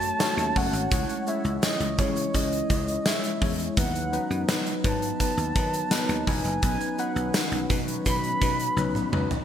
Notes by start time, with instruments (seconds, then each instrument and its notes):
Already playing: slap bass F#2, ambient pad F#3 A3 C#4, tine electric piano A3 C#4 F#4 C#5, soft synth lead A5
0.01 closed hi-hat, shaker
0.19 tine electric piano A3 C#4 F#4 C#5, snare, closed hi-hat, tambourine, shaker
0.37 slap bass D#2, closed hi-hat, shaker
0.55 slap bass F#1, tine electric piano A3 C#4 F#4 C#5, soft synth lead F#5, kick, open hi-hat
0.73 slap bass G#1, closed hi-hat, shaker
0.91 slap bass C#2, ambient pad E3 G#3, tine electric piano G#3 C#4 E4 C#5, kick, closed hi-hat, shaker
1.09 closed hi-hat, shaker
1.27 tine electric piano G#3 C#4 E4 C#5, soft synth lead E5, closed hi-hat, shaker
1.44 slap bass C#2, closed hi-hat, shaker
1.62 tine electric piano G#3 C#4 E4 C#5, soft synth lead D#5, snare, closed hi-hat, tambourine, shaker
1.80 slap bass C#2, closed hi-hat, shaker
1.98 slap bass C#3, tine electric piano G#3 C#4 E4 C#5, soft synth lead C#5, kick, closed hi-hat, shaker
2.16 closed hi-hat, shaker
2.34 slap bass C#2, tine electric piano G#3 C#4 E4 C#5, soft synth lead D#5, kick, closed hi-hat, shaker
2.52 closed hi-hat, shaker
2.70 slap bass C#2, tine electric piano G#3 C#4 E4 C#5, kick, closed hi-hat, shaker
2.88 closed hi-hat, shaker
3.06 tine electric piano G#3 C#4 E4 C#5, soft synth lead E5, snare, closed hi-hat, tambourine, shaker
3.24 closed hi-hat, shaker
3.41 slap bass E2, tine electric piano G#3 C#4 E4 C#5, kick, open hi-hat
3.59 closed hi-hat, shaker
3.77 slap bass D#2, ambient pad D#3 F#3 B3, tine electric piano F#3 B3 D#4 B4, soft synth lead F#5, kick, closed hi-hat, shaker
3.95 closed hi-hat, shaker
4.12 tine electric piano F#3 B3 D#4 B4, closed hi-hat, shaker
4.30 slap bass F#2, closed hi-hat, shaker
4.48 tine electric piano F#3 B3 D#4 B4, snare, closed hi-hat, tambourine, shaker
4.66 closed hi-hat, shaker
4.84 slap bass G#2, tine electric piano F#3 B3 D#4 B4, soft synth lead A5, kick, closed hi-hat, shaker
5.02 closed hi-hat, shaker
5.19 tine electric piano F#3 B3 D#4 B4, kick, closed hi-hat, shaker
5.37 slap bass D#2, closed hi-hat, shaker
5.55 slap bass D#3, tine electric piano F#3 B3 D#4 B4, kick, closed hi-hat, shaker
5.73 closed hi-hat, shaker
5.90 tine electric piano F#3 B3 D#4 B4, snare, closed hi-hat, tambourine, shaker
6.09 slap bass D#2, closed hi-hat, shaker
6.26 slap bass E1, tine electric piano F#3 B3 D#4 B4, soft synth lead G#5, kick, open hi-hat
6.45 slap bass F#1, closed hi-hat, shaker
6.62 slap bass B1, tine electric piano F#3 C#4 D#4 B4, ambient pad C#4 F#4, soft synth lead G#5, kick, closed hi-hat, shaker
6.81 closed hi-hat, shaker
6.98 tine electric piano F#3 C#4 D#4 B4, soft synth lead F#5, closed hi-hat, shaker
7.16 slap bass B1, closed hi-hat, shaker
7.34 tine electric piano F#3 C#4 D#4 B4, snare, closed hi-hat, tambourine, shaker
7.52 slap bass B1, closed hi-hat, shaker
7.70 slap bass B2, tine electric piano F#3 C#4 D#4 B4, kick, closed hi-hat, shaker
7.88 closed hi-hat, shaker
8.05 slap bass B2, tine electric piano F#3 C#4 D#4 B4, soft synth lead B5, kick, closed hi-hat, shaker
8.24 closed hi-hat, shaker
8.41 slap bass B2, tine electric piano F#3 C#4 D#4 B4, kick, closed hi-hat, shaker
8.59 closed hi-hat, shaker
8.76 slap bass B1, tine electric piano F#3 C#4 D#4 B4, high tom, shaker
8.95 mid tom, shaker
9.12 slap bass C#2, tine electric piano F#3 C#4 D#4 B4, mid tom
9.31 floor tom, shaker